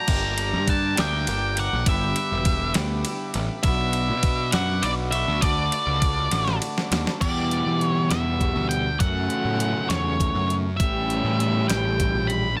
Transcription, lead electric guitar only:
Already playing: A#5
0.70 A5
1.00 G5
1.60 F#5
1.89 E5
3.63 E5
4.52 F#5
4.82 D5
5.11 E5
5.41 D5
7.21 D5
7.84 C#5
8.10 E5
8.69 G5
9.00 F#5
9.89 C#5
10.77 E5
11.68 G5
12.27 B5
12.57 A5

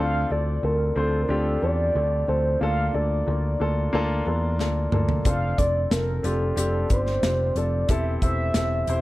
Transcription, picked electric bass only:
Already playing: D2
0.31 D2
0.63 D2
0.96 D2
1.29 D2
1.62 E2
1.95 D2
2.28 D2
2.61 D2
2.94 D2
3.28 D2
3.60 D2
3.94 D2
4.27 E2
4.59 D2
4.92 D2
5.26 F1
5.58 F1
5.91 F1
6.24 F1
6.57 F1
6.90 G1
7.23 F1
7.55 F1
7.89 E1
8.22 E1
8.55 E1
8.88 E1

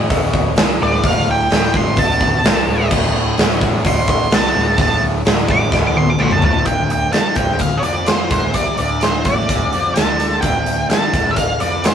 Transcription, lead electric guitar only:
0.83 D5
1.06 F5
1.31 G5
1.77 C6
1.99 A5
3.87 C6
4.10 C6
4.34 A5
4.81 A5
5.51 D6
5.87 D6
5.98 C6
6.10 D6
6.20 A5 C6
6.32 A5
6.45 A5
6.66 G5
6.92 G5
7.13 A5
7.37 G5
7.61 F5
7.77 C#5
7.84 D5
8.07 C5
8.32 C5
8.54 D5
8.79 D5
9.03 C5
9.25 D5
9.94 A5
10.41 G5
10.90 A5
11.31 E5
11.36 F5
11.61 D5
11.85 C5

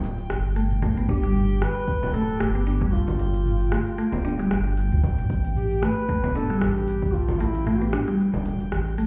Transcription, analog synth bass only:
Already playing: D1
0.30 G1
0.97 G1
1.09 G1
2.03 D1
2.40 G1
3.08 G1
3.19 G1
4.13 D1
4.51 G1
4.92 D2
5.04 D1
5.18 F1
5.30 A1
6.24 E1
6.61 A1
7.29 A1
7.40 A1
8.34 E1
8.72 A1

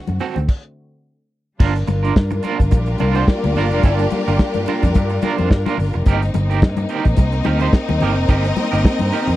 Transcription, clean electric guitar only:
0.09 muted clean electric guitar stroke
0.20 C4 F#4 A4
0.36 muted clean electric guitar stroke
1.60 D4 F4 A#4
1.87 muted clean electric guitar stroke
2.03 D4 F4 A#4
2.31 muted clean electric guitar stroke
2.43 D4 F4 A#4
2.59 muted clean electric guitar stroke
2.71 muted clean electric guitar stroke
2.88 muted clean electric guitar stroke
3.00 D4 F4 A#4
3.16 D4 F4 C5
3.44 muted clean electric guitar stroke
3.57 D4 F4 A#4
3.72 D4 F4 A#4
3.84 D4 F4 A#4
4.00 muted clean electric guitar stroke
4.12 muted clean electric guitar stroke
4.28 D4 F4 A#4
4.56 muted clean electric guitar stroke
4.68 D4 F4 A#4
4.84 muted clean electric guitar stroke
4.96 muted clean electric guitar stroke
5.11 muted clean electric guitar stroke
5.23 D4 F4 A#4
5.38 D4 F4 C5
5.50 muted clean electric guitar stroke
5.66 D4 F4 A#4
5.94 muted clean electric guitar stroke
6.07 D#4 G4 A#4
6.22 muted clean electric guitar stroke
6.34 muted clean electric guitar stroke
6.50 D#4 G4 A#4
6.78 muted clean electric guitar stroke
6.89 D#4 G4 A#4
7.06 muted clean electric guitar stroke
7.18 muted clean electric guitar stroke
7.33 muted clean electric guitar stroke
7.45 D#4 G4 A#4
7.62 D#4 G4 C5
7.89 muted clean electric guitar stroke
8.02 D#4 G4 A#4
8.17 muted clean electric guitar stroke
8.29 D#4 G4 A#4
8.45 muted clean electric guitar stroke
8.57 muted clean electric guitar stroke
8.72 D#4 G4 A#4
9.00 muted clean electric guitar stroke
9.13 D#4 G4 A#4
9.28 muted clean electric guitar stroke

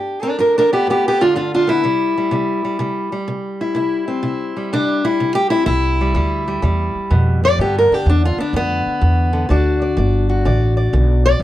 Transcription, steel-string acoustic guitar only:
Already playing: G2 G4
0.23 D4 A#4
0.39 G2 D4 A#4
0.58 D4 A#4
0.73 B3 G4
0.87 G2 B3 G4
1.08 B3 G4
1.21 D3 D4 F4
1.35 G2 D4 F4
1.54 D4 F4
1.67 B3 E4
1.84 C3 G3
2.18 G3
2.31 C3 G3
2.65 G3
2.79 C3 G3
3.12 G3
3.28 C3
3.61 E4
3.75 C3 E4
4.08 C4
4.23 C3 E4
4.57 G3
4.73 C3 D4
5.05 G3 E4
5.20 C3
5.35 G4
5.50 C4 E4
5.66 C3 E4
6.01 G3
6.15 C3 G3
6.48 G3
6.62 C3 G3
7.11 B2
7.44 A2 D5
7.59 G2 D3 B3 D4 G4
7.78 A#4
7.92 D4 G4
8.07 G2 D4
8.25 F4
8.38 B3 D4
8.54 G2 B3
9.01 G2
9.33 D3
9.49 D3 D4 F#4 D5
9.82 D5
9.97 D3 D5
10.29 F#4
10.45 D3 D5
10.77 D5
10.93 D3
11.26 D5

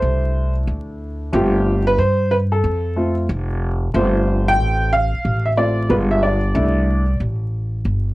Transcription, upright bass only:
0.02 C2
0.67 D2
1.33 G1
1.98 G2
2.64 F2
3.29 F1
3.94 G1
4.59 A1
5.13 muted upright bass stroke
5.25 A1
5.90 G1
6.55 C2
7.20 A1
7.85 G1

